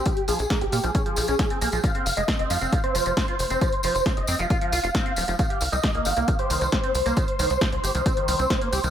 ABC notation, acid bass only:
X:1
M:4/4
L:1/16
Q:1/4=135
K:Fm
V:1 name="Acid bass"
F, z F, z B, z B, F, D F, F, D D C B, F, | F, C z A, C C F, C F, C F, F, C F z C | F, z F, z C z C F, F F, F F C C F, F, | E, G z G, G B, E, B, E, G E, E, G C z B, |
E, z E, z G z G E, C E, E, C C B, G E, |]